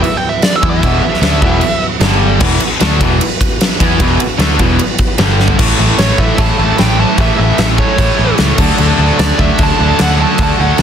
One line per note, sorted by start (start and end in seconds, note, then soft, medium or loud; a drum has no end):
0.00 1.97 E3 medium
0.00 1.98 B3 medium
0.00 1.97 F#4 medium
0.00 0.17 E5 medium
0.00 crash medium
0.17 0.30 G5 loud
0.29 0.43 E5 loud
0.42 0.56 D5 loud
0.42 snare loud
0.42 crash medium
0.56 0.69 E5 loud
0.63 0.81 E2 loud
0.63 0.82 E3 loud
0.63 0.82 B3 loud
0.63 0.83 E4 loud
0.63 kick loud
0.70 1.85 E5 loud
0.82 1.02 E1 medium
0.82 1.02 E2 loud
0.82 1.02 B2 loud
0.82 1.03 E3 loud
0.82 kick loud
0.82 crash medium
1.02 muted picked electric bass stroke soft
1.02 muted distorted electric guitar stroke medium
1.14 snare soft
1.22 1.40 D2 loud
1.22 1.42 D3 medium
1.22 1.42 A3 loud
1.22 1.42 D4 loud
1.22 snare loud
1.22 crash medium
1.42 1.61 E1 loud
1.42 1.62 E2 loud
1.42 1.62 B2 medium
1.42 1.62 E3 medium
1.42 kick loud
1.61 crash medium
2.00 2.38 G1 loud
2.00 2.41 G2 medium
2.00 2.42 D3 medium
2.00 2.41 G3 medium
2.00 2.42 G3 loud
2.00 2.41 D4 medium
2.00 2.41 A4 medium
2.00 snare loud
2.00 crash medium
2.40 2.60 E1 loud
2.40 2.60 E2 loud
2.40 2.61 B2 loud
2.40 5.16 E3 medium
2.40 2.61 E3 loud
2.40 5.16 B3 medium
2.40 5.16 F#4 medium
2.40 kick loud
2.40 crash loud
2.60 muted distorted electric guitar stroke medium
2.60 ride medium
2.80 3.00 D2 loud
2.80 3.00 D3 medium
2.80 3.00 A3 loud
2.80 3.00 D4 loud
2.80 snare loud
2.80 ride loud
3.00 3.19 E1 medium
3.00 3.20 E2 medium
3.00 3.20 B2 loud
3.00 3.20 E3 loud
3.00 kick medium
3.00 ride medium
3.21 ride loud
3.41 kick medium
3.41 ride loud
3.61 snare loud
3.61 ride loud
3.80 3.99 E2 loud
3.80 3.99 E3 loud
3.80 4.00 B3 loud
3.80 4.00 E4 loud
3.80 kick medium
3.80 ride medium
4.00 4.18 E1 loud
4.00 4.19 E2 medium
4.00 4.20 B2 loud
4.00 4.20 E3 loud
4.00 kick loud
4.00 ride loud
4.19 muted picked electric bass stroke soft
4.19 muted distorted electric guitar stroke medium
4.19 ride medium
4.38 4.58 D2 loud
4.38 4.58 D3 loud
4.38 4.58 A3 medium
4.38 4.59 D4 loud
4.38 snare loud
4.38 ride loud
4.58 4.78 E1 loud
4.58 4.78 E2 medium
4.58 4.78 B2 medium
4.58 4.78 E3 loud
4.58 kick medium
4.58 ride medium
4.79 ride loud
4.98 kick medium
4.98 ride medium
5.18 5.56 G1 loud
5.18 5.58 G2 medium
5.18 5.56 D3 medium
5.18 5.57 G3 loud
5.18 5.59 G3 medium
5.18 5.59 D4 medium
5.18 5.59 A4 medium
5.18 snare loud
5.18 ride loud
5.40 snare medium
5.48 floor tom loud
5.57 5.71 A1 loud
5.57 5.78 A2 medium
5.57 5.79 E3 loud
5.57 8.54 A3 medium
5.57 5.79 A3 loud
5.57 8.54 E4 medium
5.57 8.54 B4 medium
5.57 kick loud
5.57 crash loud
5.57 crash medium
5.78 5.91 A1 medium
5.78 5.97 A2 medium
5.78 5.99 E3 medium
5.78 5.99 A3 loud
5.98 6.11 A1 loud
5.98 6.17 A2 medium
5.98 6.18 E3 medium
5.98 6.19 A3 loud
5.98 6.19 C#5 medium
5.98 snare loud
5.98 crash medium
6.18 6.31 A1 medium
6.18 6.37 A2 medium
6.18 6.38 E3 medium
6.18 6.39 A3 medium
6.18 6.40 E5 medium
6.18 kick medium
6.38 6.51 A1 medium
6.38 6.57 A2 medium
6.38 6.58 E3 loud
6.38 6.59 A3 medium
6.38 6.75 A5 loud
6.38 kick loud
6.38 crash medium
6.59 6.71 A1 loud
6.59 6.77 A2 loud
6.59 6.78 E3 loud
6.59 6.79 A3 loud
6.78 7.04 A1 medium
6.78 6.98 A2 medium
6.78 6.98 E3 medium
6.78 6.99 A3 loud
6.78 6.97 G5 loud
6.78 snare loud
6.78 crash medium
6.99 7.16 A2 medium
6.99 7.18 E3 medium
6.99 7.19 A3 medium
6.99 7.18 A5 medium
7.18 7.30 A1 loud
7.18 7.37 A2 loud
7.18 7.38 E3 loud
7.18 7.39 A3 loud
7.18 7.38 E5 loud
7.18 kick loud
7.18 crash medium
7.38 7.51 A1 medium
7.38 7.57 A2 medium
7.38 7.57 E3 medium
7.38 7.58 A3 medium
7.38 7.57 E5 medium
7.58 7.82 A1 loud
7.58 7.78 A2 medium
7.58 7.78 E3 medium
7.58 7.80 A3 loud
7.58 7.65 E5 loud
7.58 snare loud
7.58 crash medium
7.78 7.97 A2 medium
7.78 7.98 E3 medium
7.78 8.00 A3 medium
7.78 8.35 C#5 medium
7.78 kick medium
7.98 8.10 A1 medium
7.98 8.17 A2 medium
7.98 8.18 E3 medium
7.98 8.20 A3 loud
7.98 kick loud
7.98 crash medium
8.18 8.31 A1 medium
8.18 8.38 A2 loud
8.18 8.38 E3 loud
8.18 8.40 A3 loud
8.38 8.51 C#2 loud
8.38 8.57 A2 medium
8.38 8.57 E3 medium
8.38 8.59 A3 loud
8.38 snare loud
8.38 crash medium
8.58 8.71 D2 loud
8.58 8.78 D3 loud
8.58 8.79 A3 loud
8.58 10.82 D4 medium
8.58 8.79 D4 loud
8.58 10.82 A4 medium
8.58 10.82 E5 medium
8.58 kick loud
8.58 crash loud
8.78 8.91 D2 loud
8.78 8.97 D3 loud
8.78 8.98 A3 loud
8.78 8.99 D4 loud
8.78 crash medium
8.97 9.10 D2 medium
8.97 9.17 D3 medium
8.97 9.18 A3 medium
8.97 9.18 D4 loud
9.17 9.31 D2 loud
9.17 9.37 D3 medium
9.17 9.38 A3 medium
9.17 9.39 D4 loud
9.17 9.39 D5 loud
9.17 snare loud
9.17 crash medium
9.38 9.51 D2 medium
9.38 9.56 D3 medium
9.38 9.57 A3 medium
9.38 9.58 D4 loud
9.38 9.60 E5 medium
9.38 kick medium
9.57 9.71 D2 loud
9.57 9.78 D3 medium
9.57 9.78 A3 medium
9.57 9.80 D4 loud
9.57 kick loud
9.57 crash medium
9.63 10.01 A5 loud
9.79 9.92 D2 loud
9.79 9.98 D3 medium
9.79 9.99 A3 loud
9.79 9.99 D4 loud
9.99 10.24 D2 loud
9.99 10.18 D3 medium
9.99 10.18 A3 medium
9.99 10.19 D4 medium
9.99 10.20 F#5 loud
9.99 snare loud
9.99 crash medium
10.19 10.38 D3 medium
10.19 10.39 A3 medium
10.19 10.40 D4 loud
10.19 10.40 A5 medium
10.38 10.51 D2 medium
10.38 10.57 D3 medium
10.38 10.58 A3 medium
10.38 10.58 D4 loud
10.38 kick loud
10.38 crash medium
10.43 10.59 A5 loud
10.58 10.71 D2 medium
10.58 10.77 D3 medium
10.58 10.78 A3 medium
10.58 10.78 D4 medium
10.58 10.78 F#5 loud
10.78 10.82 D2 loud
10.78 10.82 D3 medium
10.78 10.82 A3 medium
10.78 snare loud
10.78 crash medium